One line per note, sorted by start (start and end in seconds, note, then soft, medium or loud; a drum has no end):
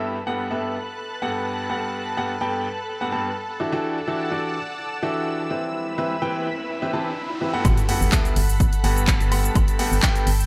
0.00 0.16 G2 medium
0.00 0.16 B3 medium
0.00 0.16 G4 medium
0.00 0.16 A4 medium
0.00 5.47 A4 medium
0.00 3.57 B4 medium
0.00 0.16 E5 medium
0.00 3.57 A5 medium
0.00 3.57 F#6 medium
0.27 0.47 G2 medium
0.27 0.47 B3 medium
0.27 0.47 G4 medium
0.27 0.47 A4 medium
0.27 0.47 F#5 medium
0.51 0.75 G2 medium
0.51 0.75 B3 medium
0.51 0.75 G4 medium
0.51 0.75 A4 medium
0.51 0.75 E5 medium
1.22 1.67 G2 medium
1.22 1.67 B3 medium
1.22 1.67 G4 medium
1.22 1.67 A4 medium
1.22 1.67 F#5 medium
1.70 2.14 G2 medium
1.70 2.15 B3 medium
1.70 2.15 G4 medium
1.70 2.14 A4 medium
1.70 2.14 F#5 medium
2.17 2.33 G2 medium
2.17 2.33 B3 medium
2.17 2.33 G4 medium
2.17 2.33 A4 medium
2.17 2.33 F#5 loud
2.41 2.65 G2 medium
2.41 2.65 B3 medium
2.41 2.65 G4 medium
2.41 2.65 A4 medium
2.41 2.65 G5 loud
3.01 3.11 G2 medium
3.01 3.11 B3 medium
3.01 3.11 G4 medium
3.01 3.11 A4 medium
3.01 3.11 F#5 medium
3.12 3.28 G2 medium
3.12 3.28 B3 medium
3.12 3.28 G4 medium
3.12 3.28 A4 medium
3.12 3.28 A5 medium
3.60 3.71 E3 medium
3.60 3.71 D4 medium
3.60 3.71 F#4 medium
3.60 3.71 G4 medium
3.60 3.71 A4 medium
3.60 5.49 D5 medium
3.60 3.71 E5 medium
3.60 5.49 F#5 medium
3.60 5.49 A5 medium
3.60 7.61 E6 medium
3.72 3.97 E3 medium
3.72 3.97 D4 medium
3.72 3.97 F#4 medium
3.72 3.97 G4 medium
3.72 3.97 A4 medium
3.72 3.97 E5 loud
3.84 riser medium
4.07 4.28 E3 medium
4.07 4.28 D4 medium
4.07 4.28 F#4 medium
4.07 4.28 G4 medium
4.07 4.28 A4 medium
4.07 4.28 E5 medium
4.31 4.56 E3 medium
4.31 4.56 D4 medium
4.31 4.56 F#4 medium
4.31 4.56 G4 medium
4.31 4.56 A4 medium
4.31 4.56 D5 medium
5.03 5.48 E3 medium
5.03 5.48 D4 medium
5.03 5.48 F#4 medium
5.03 5.48 G4 medium
5.03 5.48 A4 medium
5.03 5.48 E5 loud
5.50 5.95 E3 medium
5.50 5.95 C4 medium
5.50 7.63 E4 medium
5.50 5.95 G4 medium
5.50 5.95 B4 medium
5.50 7.63 B4 medium
5.50 5.95 E5 medium
5.50 7.63 B5 medium
5.98 6.14 E3 medium
5.98 6.14 C4 medium
5.98 6.14 G4 medium
5.98 6.14 B4 medium
5.98 6.14 E5 medium
6.22 6.46 E3 medium
6.22 6.46 C4 medium
6.22 6.46 G4 medium
6.22 6.46 B4 medium
6.22 6.46 G5 loud
6.82 6.92 E3 medium
6.82 6.92 C4 medium
6.82 6.92 G4 medium
6.82 6.92 B4 medium
6.82 6.92 E5 medium
6.93 7.09 E3 medium
6.93 7.09 C4 medium
6.93 7.09 G4 medium
6.93 7.09 B4 medium
6.93 7.09 A5 medium
7.41 7.52 E3 medium
7.41 7.52 C4 medium
7.41 7.52 G4 medium
7.41 7.52 B4 medium
7.41 7.52 E5 medium
7.53 7.78 G2 medium
7.53 7.78 B3 medium
7.53 7.78 G4 medium
7.53 7.78 A4 medium
7.53 7.78 F#5 loud
7.65 7.74 G1 medium
7.65 10.46 A4 medium
7.65 9.53 F#5 medium
7.65 10.46 B5 medium
7.65 kick loud
7.65 closed hi-hat medium
7.65 sub drop medium
7.65 high woodblock medium
7.65 shaker medium
7.77 closed hi-hat medium
7.77 shaker soft
7.89 8.09 G2 medium
7.89 8.09 B3 medium
7.89 8.09 G4 medium
7.89 8.09 A4 medium
7.89 8.09 F#5 medium
7.89 open hi-hat loud
8.01 8.09 G1 medium
8.01 shaker medium
8.12 8.37 G2 medium
8.12 8.37 A4 medium
8.12 8.37 E5 medium
8.12 kick loud
8.12 clap loud
8.12 closed hi-hat medium
8.12 shaker medium
8.25 closed hi-hat medium
8.25 shaker soft
8.36 8.67 G1 medium
8.36 open hi-hat loud
8.49 shaker medium
8.60 kick loud
8.60 closed hi-hat medium
8.60 shaker medium
8.73 closed hi-hat medium
8.73 shaker soft
8.84 9.14 G1 medium
8.84 9.29 G2 medium
8.84 9.29 B3 medium
8.84 9.29 G4 medium
8.84 9.29 A4 medium
8.84 9.29 F#5 medium
8.84 open hi-hat loud
8.97 closed hi-hat soft
8.97 shaker medium
9.07 kick loud
9.07 clap loud
9.07 closed hi-hat medium
9.07 shaker medium
9.20 9.50 G1 loud
9.20 closed hi-hat medium
9.20 shaker soft
9.31 9.76 G2 medium
9.31 9.76 B3 medium
9.31 9.76 G4 medium
9.31 9.76 A4 medium
9.31 9.76 F#5 medium
9.31 open hi-hat loud
9.31 high woodblock medium
9.44 closed hi-hat soft
9.44 shaker medium
9.55 9.64 G1 medium
9.55 10.46 G5 medium
9.55 kick loud
9.55 closed hi-hat medium
9.55 high woodblock medium
9.55 shaker medium
9.68 closed hi-hat medium
9.68 shaker soft
9.79 9.95 G2 medium
9.79 9.95 B3 medium
9.79 9.95 G4 medium
9.79 9.95 A4 medium
9.79 9.95 F#5 loud
9.79 open hi-hat loud
9.92 10.00 G1 medium
9.92 shaker medium
10.03 10.27 G2 medium
10.03 10.27 B3 medium
10.03 10.27 G4 medium
10.03 10.27 A4 medium
10.03 10.27 G5 loud
10.03 kick loud
10.03 clap loud
10.03 closed hi-hat medium
10.03 shaker medium
10.16 closed hi-hat medium
10.16 shaker soft
10.27 10.46 G1 medium
10.27 open hi-hat loud
10.40 shaker medium